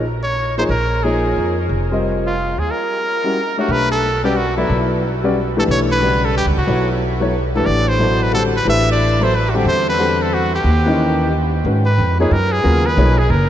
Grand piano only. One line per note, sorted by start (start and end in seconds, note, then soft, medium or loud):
0.58 0.68 F3 medium
0.58 0.69 A#3 medium
0.58 0.69 D#4 medium
0.58 0.69 G#4 medium
0.58 0.69 C#5 medium
1.04 1.54 F3 medium
1.04 1.54 A#3 medium
1.04 1.54 D#4 medium
1.04 1.54 G#4 medium
1.04 1.54 C#5 medium
1.91 2.34 G3 medium
1.91 2.34 C4 medium
1.91 2.34 F4 medium
1.91 2.34 A#4 medium
1.91 2.35 D#5 medium
3.24 3.35 G3 medium
3.24 3.35 C#4 medium
3.24 3.35 E4 medium
3.24 3.35 F#4 medium
3.24 3.36 A#4 medium
3.57 4.00 A3 medium
3.57 4.00 D4 medium
3.57 4.01 G4 medium
3.57 4.01 C#5 medium
3.57 4.01 E5 medium
4.24 4.34 G3 medium
4.24 4.35 C#4 medium
4.24 4.35 F#4 medium
4.24 4.35 B4 medium
4.24 4.35 D5 medium
4.57 5.00 F#3 medium
4.57 5.00 B3 medium
4.57 5.00 E4 medium
4.57 5.00 A4 medium
4.57 5.00 D5 medium
5.23 5.34 G3 medium
5.23 5.34 C#4 medium
5.23 5.35 F#4 medium
5.23 5.34 B4 medium
5.23 5.35 D5 medium
5.57 5.99 E3 medium
5.57 5.99 A3 medium
5.57 5.99 D4 medium
5.57 6.00 G4 medium
5.57 6.00 B4 medium
6.01 6.52 C#3 medium
6.01 6.51 G3 medium
6.01 6.52 F#4 medium
6.01 6.52 B4 medium
6.01 6.52 D5 medium
6.67 7.17 F#3 medium
6.67 7.17 B3 medium
6.67 7.18 E4 medium
6.67 7.18 A4 medium
6.67 7.18 C#5 medium
7.20 7.32 F#3 medium
7.20 7.32 B3 medium
7.20 7.32 E4 medium
7.20 7.33 A4 medium
7.20 7.33 C#5 medium
7.55 7.98 E3 medium
7.55 7.98 A3 medium
7.55 7.98 D4 medium
7.55 7.98 G4 medium
7.55 7.99 B4 medium
7.99 8.32 B2 medium
7.99 8.32 F#3 medium
7.99 8.32 E4 medium
7.99 8.32 A4 medium
7.99 8.32 C5 medium
8.32 8.52 D3 medium
8.32 8.52 G3 medium
8.32 8.52 C4 medium
8.32 8.52 F#4 medium
8.32 8.52 A4 medium
8.66 9.16 E3 medium
8.66 9.17 A3 medium
8.66 9.17 D4 medium
8.66 9.17 G4 medium
8.66 9.17 B4 medium
9.20 9.31 F#3 medium
9.20 9.31 B3 medium
9.20 9.31 E4 medium
9.20 9.32 A4 medium
9.20 9.32 C5 medium
9.54 9.97 D3 medium
9.54 9.97 G3 medium
9.54 9.97 C4 medium
9.54 9.97 F#4 medium
9.54 9.97 A4 medium
9.99 10.49 D3 medium
9.99 10.49 G3 medium
9.99 10.49 C4 medium
9.99 10.49 F#4 medium
9.99 10.50 A4 medium
10.86 11.29 E3 medium
10.86 11.29 A#3 medium
10.86 11.29 C#4 medium
10.86 11.30 D#4 medium
10.86 11.30 G4 medium
11.65 11.84 D#3 medium
11.65 11.84 G#3 soft
11.65 11.84 C#4 medium
11.65 11.84 F#4 medium
11.65 11.85 B4 medium
12.19 12.30 F3 medium
12.19 12.30 A#3 medium
12.19 12.30 D#4 medium
12.19 12.31 G#4 medium
12.19 12.31 C#5 medium
12.63 12.83 C#3 medium
12.63 12.83 F#3 medium
12.63 12.83 B3 medium
12.63 12.84 F4 medium
12.63 12.83 A#4 medium
12.97 13.16 F3 medium
12.97 13.17 A#3 medium
12.97 13.17 D#4 medium
12.97 13.17 G#4 medium
12.97 13.17 C#5 medium